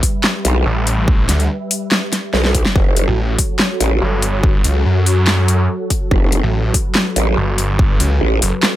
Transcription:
0.00 2.72 G3 medium
0.00 2.72 G4 medium
0.00 2.72 B4 medium
0.00 2.72 E5 medium
0.00 kick medium
0.00 open hi-hat loud
0.24 snare loud
0.24 clap medium
0.45 0.64 B1 loud
0.45 closed hi-hat medium
0.66 1.27 A1 loud
0.87 closed hi-hat medium
1.08 kick loud
1.29 1.48 D2 loud
1.29 snare medium
1.29 closed hi-hat medium
1.40 closed hi-hat soft
1.71 open hi-hat medium
1.92 snare loud
1.92 clap medium
2.13 snare medium
2.13 closed hi-hat medium
2.34 2.64 B1 loud
2.34 snare medium
2.45 snare medium
2.55 kick medium
2.55 closed hi-hat medium
2.66 snare medium
2.76 3.06 F#1 loud
2.76 8.76 F#3 medium
2.76 8.76 F#4 medium
2.76 8.76 A4 medium
2.76 6.08 C#5 medium
2.76 kick loud
2.97 closed hi-hat medium
3.08 3.37 A1 loud
3.39 kick medium
3.39 open hi-hat medium
3.59 snare loud
3.59 clap medium
3.80 4.00 A1 loud
3.80 closed hi-hat medium
4.02 4.63 G1 loud
4.22 closed hi-hat medium
4.43 kick loud
4.64 4.84 C#2 loud
4.64 closed hi-hat medium
4.86 5.68 F#2 medium
5.06 open hi-hat medium
5.27 snare loud
5.27 clap medium
5.48 closed hi-hat medium
5.90 kick medium
5.90 closed hi-hat medium
6.11 6.42 F#1 loud
6.11 8.76 B4 medium
6.11 kick loud
6.32 closed hi-hat medium
6.43 6.73 A1 loud
6.74 kick medium
6.74 open hi-hat medium
6.95 snare loud
6.95 clap medium
7.16 7.36 A1 loud
7.16 closed hi-hat medium
7.37 7.99 G1 loud
7.58 closed hi-hat medium
7.79 kick loud
8.00 8.20 C#2 loud
8.00 closed hi-hat medium
8.21 8.40 A1 loud
8.42 8.51 F#1 loud
8.42 open hi-hat medium
8.63 snare loud
8.63 clap medium

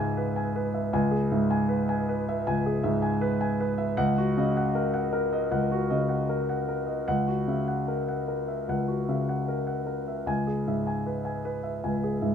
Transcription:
0.00 0.89 C#2 medium
0.00 0.95 G#2 medium
0.00 0.95 G#4 medium
0.00 0.17 B4 medium
0.00 0.74 E5 medium
0.00 0.36 G#5 medium
0.17 0.47 B4 medium
0.36 0.66 G#5 medium
0.56 0.86 B4 medium
0.74 1.04 E5 soft
0.93 2.41 C#2 medium
0.93 1.23 G#5 medium
1.11 1.42 G#4 medium
1.32 1.92 G#2 medium
1.32 1.62 E5 soft
1.51 1.80 G#5 medium
1.69 1.99 B4 medium
1.89 2.19 G#5 medium
2.09 2.38 B4 medium
2.29 2.58 E5 medium
2.47 3.95 C#2 medium
2.47 2.77 G#5 medium
2.66 2.96 G#4 medium
2.83 3.45 G#2 medium
2.83 3.14 E5 medium
3.02 3.33 G#5 medium
3.21 3.52 B4 medium
3.41 3.71 G#5 medium
3.60 3.90 B4 medium
3.78 3.97 E5 medium
3.97 5.46 C#2 medium
3.97 4.28 F#5 medium
4.18 4.48 F#4 medium
4.37 4.97 C#3 medium
4.37 4.67 D#5 medium
4.57 4.86 F#5 medium
4.75 5.05 A#4 medium
4.94 5.24 F#5 medium
5.13 5.43 A#4 medium
5.33 5.62 D#5 medium
5.52 7.03 C#2 medium
5.52 5.82 F#5 medium
5.72 6.01 F#4 medium
5.90 6.52 C#3 soft
5.90 6.20 D#5 medium
6.09 6.39 F#5 medium
6.29 6.60 A#4 medium
6.49 6.80 F#5 soft
6.68 6.99 A#4 soft
6.87 7.07 D#5 soft
7.08 8.65 C#2 medium
7.08 7.39 F#5 medium
7.28 7.59 F#4 soft
7.48 8.12 C#3 soft
7.48 7.80 E5 soft
7.68 8.00 F#5 soft
7.88 8.20 A#4 soft
8.08 8.40 F#5 soft
8.28 8.60 A#4 soft
8.48 8.80 E5 soft
8.69 10.24 C#2 soft
8.69 9.01 F#5 medium
8.88 9.20 F#4 soft
9.09 9.72 C#3 soft
9.09 9.41 E5 soft
9.29 9.61 F#5 soft
9.48 9.80 A#4 soft
9.67 10.00 F#5 soft
9.86 10.19 A#4 soft
10.08 10.28 E5 soft
10.26 11.78 C#2 medium
10.26 10.59 G#5 medium
10.47 10.78 G#4 soft
10.67 11.29 G#2 soft
10.67 10.98 E5 soft
10.87 11.18 G#5 soft
11.06 11.37 B4 soft
11.25 11.56 G#5 soft
11.45 11.76 B4 soft
11.63 11.95 E5 soft
11.84 12.35 C#2 soft
11.84 12.15 G#5 soft
12.04 12.34 G#4 soft
12.22 12.35 G#2 soft
12.22 12.35 E5 soft

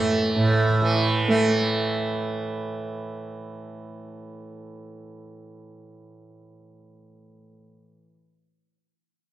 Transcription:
0.00 0.35 A2 medium
0.00 0.81 E3 medium
0.00 0.31 A3 medium
0.00 1.28 A3 medium
0.36 7.51 A2 medium
0.82 7.97 E3 medium
1.28 7.39 A3 medium

